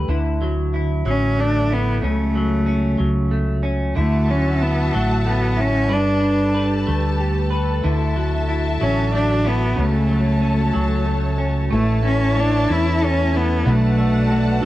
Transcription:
0.00 0.41 A3 medium
0.00 0.15 D4 soft
0.00 0.15 B4 soft
0.08 1.01 D2 medium
0.08 2.02 D3 medium
0.08 0.73 E4 soft
0.42 1.06 F#3 soft
0.74 1.69 E4 soft
1.05 1.98 A1 medium
1.05 2.35 F#3 medium
1.05 1.42 C#4 medium
1.39 3.31 A3 soft
1.39 1.74 D4 medium
1.70 2.04 B3 medium
1.70 2.02 E4 soft
2.02 2.96 C#2 medium
2.02 3.95 C#3 medium
2.02 3.29 A3 medium
2.02 2.65 C#4 soft
2.35 2.98 F#3 soft
2.66 3.62 C#4 soft
2.98 3.93 C#2 medium
2.98 4.03 F#3 medium
3.31 5.25 A3 soft
3.63 3.96 C#4 medium
3.96 4.90 D2 medium
3.96 5.88 D3 medium
3.96 4.33 A3 medium
3.96 4.60 E4 soft
3.96 5.89 F#4 medium
3.96 5.89 E5 soft
3.96 5.89 F#5 medium
3.96 5.89 A5 medium
4.28 4.92 F#3 soft
4.28 4.64 C#4 medium
4.61 4.97 B3 medium
4.61 5.56 E4 soft
4.93 5.91 A1 medium
4.93 5.97 F#3 medium
4.93 5.27 A3 medium
5.25 6.21 A3 soft
5.25 5.63 B3 medium
5.57 5.95 C#4 medium
5.57 5.97 E4 medium
5.89 6.84 G1 medium
5.89 7.83 G3 medium
5.89 7.83 G4 medium
5.89 9.75 A4 medium
5.89 6.53 B4 soft
5.89 7.82 B4 soft
5.89 7.83 A5 medium
5.93 6.65 D4 medium
6.22 7.90 D4 soft
6.54 7.49 B4 soft
6.87 7.81 D2 medium
6.87 8.15 A3 medium
7.18 7.84 G4 soft
7.50 7.90 B4 soft
7.83 8.78 D2 medium
7.83 9.76 D3 medium
7.83 8.47 E4 medium
7.83 11.68 F#4 soft
7.83 9.76 E5 soft
7.83 9.76 A5 medium
8.16 8.80 F#3 soft
8.48 9.44 E4 soft
8.81 9.74 A1 medium
8.81 9.85 F#3 medium
8.81 9.12 C#4 medium
9.13 11.05 A3 soft
9.13 9.49 D4 medium
9.45 9.82 B3 medium
9.45 9.76 E4 medium
9.76 10.71 C#2 medium
9.76 11.70 C#3 medium
9.76 10.41 C#4 soft
9.76 11.70 A4 soft
9.76 11.70 C#5 medium
9.76 11.70 A5 medium
9.80 11.09 A3 medium
10.09 10.72 F#3 soft
10.41 11.38 C#4 soft
10.74 11.68 C#2 medium
10.74 11.78 F#3 medium
11.05 11.70 A3 soft
11.38 11.78 C#4 soft
11.70 12.65 A1 medium
11.70 13.65 A3 medium
11.70 12.36 A3 medium
11.70 12.03 A3 medium
11.70 12.37 C#4 medium
11.70 13.63 E4 soft
11.70 12.37 E4 medium
11.70 14.65 B4 soft
11.70 12.38 B4 medium
11.70 13.64 C#5 medium
11.70 13.64 A5 medium
12.03 12.41 C#4 medium
12.03 12.67 E4 medium
12.35 12.69 A3 soft
12.35 12.69 E4 soft
12.35 12.68 B4 soft
12.35 13.72 C#5 medium
12.40 12.74 D4 medium
12.68 13.62 E2 medium
12.68 13.35 A3 soft
12.68 13.34 C#4 medium
12.68 13.32 E4 medium
12.68 13.33 E4 soft
12.68 13.32 B4 medium
12.72 13.07 E4 medium
13.00 13.72 A4 soft
13.05 13.39 C#4 medium
13.32 13.66 C#4 soft
13.32 13.72 E4 soft
13.32 13.66 E4 soft
13.32 13.65 B4 soft
13.37 13.71 B3 medium
13.65 14.59 B1 medium
13.65 14.30 B2 medium
13.65 14.65 B2 medium
13.65 14.29 F#3 medium
13.65 14.29 A3 medium
13.65 14.31 D4 medium
13.65 14.32 F#4 medium
13.65 14.65 D5 soft
13.65 14.65 F#5 medium
13.65 14.65 A5 medium
13.70 14.65 A3 medium
13.98 14.62 A3 soft
14.29 14.62 F#3 soft
14.29 14.61 A3 medium
14.29 14.60 D4 soft
14.29 14.65 F#4 medium
14.29 14.60 F#4 soft
14.61 14.65 D4 medium
14.61 14.65 F#4 medium

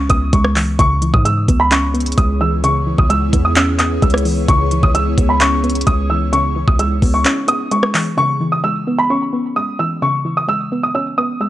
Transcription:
0.00 0.33 E3 medium
0.00 0.32 G#3 medium
0.00 0.79 C#4 loud
0.09 0.32 C#2 loud
0.09 0.79 B3 medium
0.09 0.31 D#6 medium
0.09 kick loud
0.09 closed hi-hat medium
0.33 0.77 C#2 loud
0.33 0.79 G#3 medium
0.33 0.76 C#6 medium
0.33 kick medium
0.33 closed hi-hat medium
0.44 cross-stick loud
0.56 0.79 E3 medium
0.56 clap medium
0.56 open hi-hat medium
0.79 1.12 C#2 loud
0.79 1.94 C#3 loud
0.79 8.14 B3 medium
0.79 8.14 E4 medium
0.79 8.14 G#4 medium
0.79 6.29 C#5 medium
0.79 1.12 C#6 loud
0.79 kick loud
0.79 closed hi-hat medium
1.02 2.17 E3 medium
1.02 closed hi-hat medium
1.14 1.47 G#2 loud
1.14 1.24 D#6 medium
1.14 kick loud
1.25 2.17 G#3 medium
1.25 1.58 E6 medium
1.25 closed hi-hat medium
1.48 2.15 C#2 loud
1.48 1.93 B3 medium
1.48 kick medium
1.48 closed hi-hat medium
1.60 1.70 B5 medium
1.71 2.87 C#4 loud
1.71 2.15 C#6 medium
1.71 clap loud
1.71 closed hi-hat medium
1.94 3.10 B3 medium
1.94 closed hi-hat soft
2.00 closed hi-hat medium
2.06 closed hi-hat medium
2.12 closed hi-hat medium
2.18 2.95 C#2 loud
2.18 3.08 G#3 medium
2.18 2.39 D#6 medium
2.18 kick loud
2.18 closed hi-hat medium
2.41 2.85 E3 medium
2.41 2.62 E6 medium
2.64 3.79 C#3 loud
2.64 2.96 C#6 loud
2.64 closed hi-hat medium
2.86 4.02 E3 medium
2.98 3.32 C#2 loud
2.98 3.09 D#6 medium
2.98 kick loud
3.09 4.01 G#3 medium
3.09 3.42 E6 medium
3.09 closed hi-hat medium
3.33 4.00 E2 loud
3.33 3.79 B3 medium
3.33 kick medium
3.33 closed hi-hat medium
3.45 3.55 D#6 medium
3.56 4.48 C#4 loud
3.56 3.77 E6 medium
3.56 clap loud
3.56 closed hi-hat medium
3.79 4.49 B3 medium
3.79 4.00 D#6 medium
3.79 clap medium
3.79 closed hi-hat medium
4.02 4.47 C#2 loud
4.02 4.48 G#3 loud
4.02 4.46 E6 medium
4.02 kick loud
4.02 closed hi-hat soft
4.10 cross-stick loud
4.10 closed hi-hat medium
4.18 closed hi-hat medium
4.25 4.48 E3 medium
4.25 open hi-hat medium
4.48 4.82 C#2 loud
4.48 5.64 C#3 medium
4.48 4.81 C#6 loud
4.48 kick loud
4.48 closed hi-hat medium
4.71 5.87 E3 medium
4.71 closed hi-hat medium
4.83 5.16 C#2 loud
4.83 4.94 D#6 medium
4.83 kick loud
4.95 5.86 G#3 medium
4.95 5.27 E6 medium
4.95 closed hi-hat medium
5.18 5.84 C#2 loud
5.18 5.63 B3 medium
5.18 kick medium
5.18 closed hi-hat medium
5.29 5.40 B5 medium
5.40 6.57 C#4 loud
5.40 5.84 C#6 loud
5.40 clap loud
5.40 closed hi-hat medium
5.64 6.79 B3 medium
5.64 closed hi-hat soft
5.70 closed hi-hat medium
5.75 closed hi-hat medium
5.81 closed hi-hat medium
5.87 6.64 C#2 loud
5.87 6.78 G#3 loud
5.87 6.08 D#6 medium
5.87 kick loud
5.87 closed hi-hat medium
6.10 6.55 E3 medium
6.10 6.31 E6 medium
6.33 7.48 C#3 medium
6.33 8.16 D#4 medium
6.33 6.65 C#6 loud
6.33 closed hi-hat medium
6.56 7.71 E3 medium
6.68 7.01 C#2 loud
6.68 6.78 D#6 medium
6.68 kick loud
6.79 7.70 G#3 medium
6.79 7.12 E6 medium
6.79 closed hi-hat medium
7.02 7.24 C#2 loud
7.02 7.47 B3 medium
7.02 kick medium
7.02 open hi-hat medium
7.14 7.46 C#6 medium
7.25 8.17 C#4 loud
7.25 clap loud
7.25 closed hi-hat medium
7.48 8.17 B3 medium
7.48 7.69 D#6 medium
7.48 closed hi-hat medium
7.71 8.18 G#3 medium
7.71 8.15 C#6 medium
7.71 closed hi-hat medium
7.83 cross-stick loud
7.94 8.18 E3 medium
7.94 clap medium
7.94 open hi-hat medium
8.17 9.33 C#3 loud
8.17 8.50 C#6 loud
8.40 9.56 E3 medium
8.52 8.63 D#6 medium
8.64 9.56 G#3 medium
8.64 8.96 E6 medium
8.87 9.32 B3 medium
8.98 9.09 B5 loud
9.10 10.25 C#4 loud
9.10 9.53 C#6 medium
9.33 10.48 B3 medium
9.56 10.47 G#3 medium
9.56 9.77 D#6 medium
9.79 10.24 E3 medium
9.79 10.00 E6 medium
10.02 11.18 C#3 loud
10.02 10.35 C#6 loud
10.25 11.41 E3 medium
10.37 10.47 D#6 medium
10.48 11.39 G#3 medium
10.48 10.81 E6 medium
10.72 11.17 B3 medium
10.83 10.94 D#6 medium
10.94 11.49 C#4 loud
10.94 11.16 E6 medium
11.18 11.49 B3 medium
11.18 11.39 D#6 medium
11.40 11.49 G#3 medium
11.40 11.49 E6 medium

